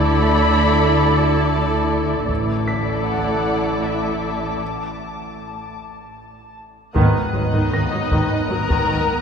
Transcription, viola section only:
\new Staff \with { instrumentName = "Viola section" } { \clef bass \time 3/4 \key a \mixolydian \tempo 4 = 78 << { e'2. | e'2. | r2. | \key gis \minor b2. | } \\ { a2. | a2. | r2. | dis16 r16 fis16 dis16 dis16 fis16 dis16 r16 fis16 dis16 dis16 r16 | } >> }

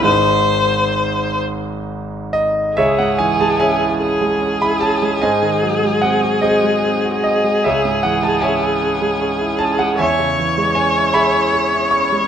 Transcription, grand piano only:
<<
  \new Staff \with { instrumentName = "Grand piano" } { \time 6/8 \key cis \minor \tempo 4. = 50 r2 r8 dis''8 | <gis' cis'' e''>16 fis''16 gis''16 a''16 <cis'' e'' gis''>4~ <cis'' e'' gis''>16 b''16 a''8 | <bis' dis'' gis''>4 fis''8 <gis' bis' dis''>4 dis''8 | <gis' cis'' e''>8 fis''16 a''16 <cis'' e'' gis''>4. a''16 fis''16 |
<cis'' e'' gis''>4 gis''8 <e'' gis'' b''>4 cis'''8 | }
  \new Staff \with { instrumentName = "Grand piano" } { \clef bass \time 6/8 \key cis \minor <gis,, gis, dis gis dis'>2. | cis,16 gis,16 e16 gis16 cis'16 e'16 cis'16 gis16 cis'16 e'16 cis'16 gis16 | gis,16 dis16 fis16 gis16 bis16 fis'16 bis16 gis16 bis16 fis'16 bis16 gis16 | cis,16 gis,16 e16 gis16 cis'16 e'16 cis'16 gis16 cis'16 e'16 cis'16 gis16 |
e,16 cis16 e16 gis16 cis'16 e'16 gis'16 e'16 gis'16 e'16 cis'16 gis16 | }
>>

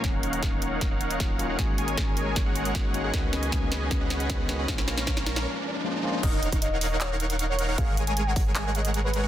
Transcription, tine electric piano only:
\new Staff \with { instrumentName = "Tine electric piano" } { \time 4/4 \key ees \minor \tempo 4 = 155 <ees ges bes des'>2. <ees ges bes des' f'>8 <ees ges bes des' f'>8 | <ees aes bes ges'>2. <ees bes des' ges'>8 <ees aes bes des' ges'>8 | <ees aes ces' des' ges'>2. <ees aes ces' des' ges'>8 <ees aes ces' des' ges'>8 | <f aes bes des' f'>2. <f aes bes des' f'>8 <f aes bes des' f'>8 |
r1 | r1 | }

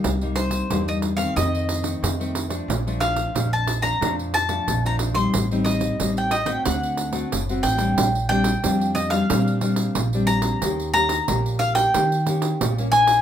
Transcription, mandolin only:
\new Staff \with { instrumentName = "Mandolin" } { \time 4/4 \key bes \major \tempo 4 = 91 r8 c''8. ees''8 f''16 ees''4. r8 | r8 f''8. a''8 bes''8 r16 a''8. bes''8 c'''16~ | c'''16 r16 ees''8. g''16 ees''16 g''16 fis''4 r8 g''8~ | g''8 g''4 ees''16 f''4. r16 bes''8~ |
bes''8 bes''4 f''16 g''4. r16 aes''8 | }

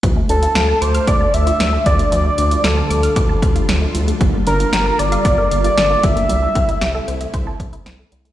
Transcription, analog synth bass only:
\new Staff \with { instrumentName = "Analog synth bass" } { \clef bass \time 4/4 \key d \minor \tempo 4 = 115 d,8 d,8 d,8 d,8 d,8 d,8 d,8 d,8 | d,8 d,8 d,8 d,8 d,8 d,8 d,8 d,8 | g,,8 g,,8 g,,8 g,,8 g,,8 g,,8 g,,8 g,,8 | c,8 c,8 c,8 c,8 c,8 c,8 c,8 c,8 | }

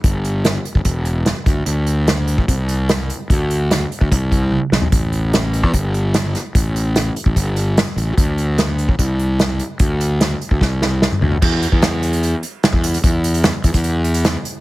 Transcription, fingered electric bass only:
\new Staff \with { instrumentName = "Fingered electric bass" } { \clef bass \time 4/4 \key d \mixolydian \tempo 4 = 148 g,,4.~ g,,16 g,,16 e,,4. d,8 | d,4.~ d,16 a,,16 c,2 | d,4.~ d,16 d,16 c,4. b,,8 | a,,4.~ a,,16 e,16 g,,2 |
a,,4.~ a,,16 a,,16 g,,4. a,,8 | d,4.~ d,16 a,,16 c,2 | d,4.~ d,16 d,16 c,4. d,8 | e,8. e,2 r8 e,8. |
e,4. e,16 e,2 r16 | }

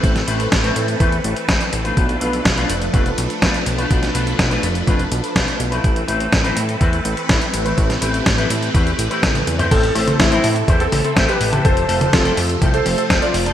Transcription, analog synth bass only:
\new Staff \with { instrumentName = "Analog synth bass" } { \clef bass \time 4/4 \key a \minor \tempo 4 = 124 a,,8 a,,8 a,,8 a,8 e,8 a,,8 a,,8 a,,8 | b,,8 b,,8 b,,8 f,,8 f,,8 b,,8 b,,8 b,,8 | b,,8 b,,8 b,,8 f,,8 f,,8 b,,8 b,,8 b,,8 | a,,8 a,,8 a,,8 a,8 e,8 a,,8 a,,8 a,,8 |
a,,8 a,,8 a,,8 a,8 e,8 a,,8 a,,8 e,8 | a,,8 a,,8 a,,8 a,8 e,8 a,,8 a,,8 a,,8 | f,,8 f,,8 f,,8 f,8 c,8 f,,8 f,,8 f,,8 | }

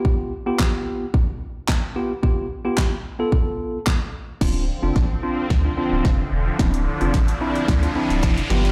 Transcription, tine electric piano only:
\new Staff \with { instrumentName = "Tine electric piano" } { \time 4/4 \key d \dorian \tempo 4 = 110 <b f' g'>8 r16 <b f' g'>4 r4. r16 <b f' g'>16 r16 | <b f' g'>8 r16 <b f' g'>8 r8 <b f' a'>4 r4 r16 | <c' d' f'>8 r16 <c' d' f'>8 r16 <c' d' f'>8 r16 <c' d' f'>16 <c' d' f'>8. r8. | <c' d' e'>8 r16 <c' d' f'>8 r16 <c' d' e'>8 r16 <c' d' f'>16 <c' d' e'>8. r16 <b f' g'>8 | }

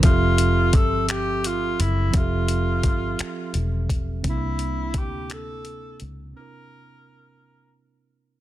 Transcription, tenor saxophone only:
\new Staff \with { instrumentName = "Tenor saxophone" } { \time 6/8 \key f \major \tempo 4. = 57 f'4 a'8 g'8 f'8 e'8 | f'2 r4 | e'4 g'8 a'4 r8 | bes'2 r4 | }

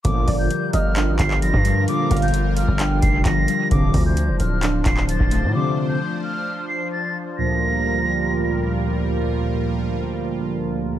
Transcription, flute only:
\new Staff \with { instrumentName = "Flute" } { \time 4/4 \key g \minor \tempo 4 = 131 d'''8. g'''8. f'''4 c''''8 bes'''4 | d'''8. g'''8. f'''4 c''''8 bes'''4 | d'''8. g'''8. f'''4 c''''8 a'''4 | d'''8. g'''8. f'''4 c''''8 a'''4 |
bes'''2. r4 | r1 | }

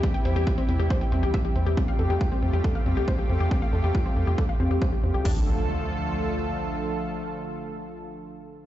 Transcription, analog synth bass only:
\new Staff \with { instrumentName = "Analog synth bass" } { \clef bass \time 4/4 \key d \minor \tempo 4 = 138 r8 e,16 e,16 r8 e,16 e,16 r8 e,16 c,16 r8 e,16 e,16 | r8 f,16 f,16 r8 f,16 f,16 r8 f,16 c,16 r8 f,16 f,16 | r8 f,16 f,16 r8 f,16 f,16 r8 f,16 f,16 r8 f,16 c,16 | d,2. r4 |
r1 | }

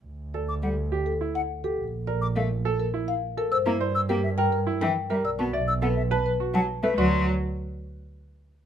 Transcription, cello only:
\new Staff \with { instrumentName = "Cello" } { \time 3/4 \key d \mixolydian \tempo 4 = 104 r4 g16 r4. r16 | r4 a16 r4. r16 | r16 bes16 r8 bes16 r4 e16 r16 g16 | r16 b16 r8 b16 r4 fis16 r16 a16 |
fis8 r2 r8 | }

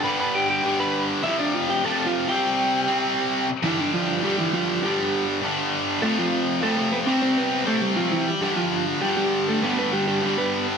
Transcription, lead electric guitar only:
\new Staff \with { instrumentName = "Lead electric guitar" } { \time 4/4 \key g \mixolydian \tempo 4 = 200 <b' b''>8 <b' b''>8 <g' g''>8 <g' g''>4 <b' b''>4 r8 | <e' e''>8 <d' d''>8 <f' f''>8 <g' g''>8 <a' a''>8. <f' f''>8. <g' g''>8~ | <g' g''>2.~ <g' g''>8 r8 | <e e'>8 <d' d''>8 <f f'>4 <g g'>8 <e e'>8 <f f'>4 |
<g g'>4. r2 r8 | <a a'>8 <f f'>4. <a a'>8 <a a'>8 <b b'>8 <c' c''>8 | <c' c''>8 <b b'>4 <a a'>8 <g g'>8 <f f'>8 <e e'>8. r16 | <g g'>8 <f f'>4 r8 <g g'>8 <g g'>4 <a a'>8 |
<b b'>8 <b b'>8 <g g'>8 <g g'>4 <b b'>4 r8 | }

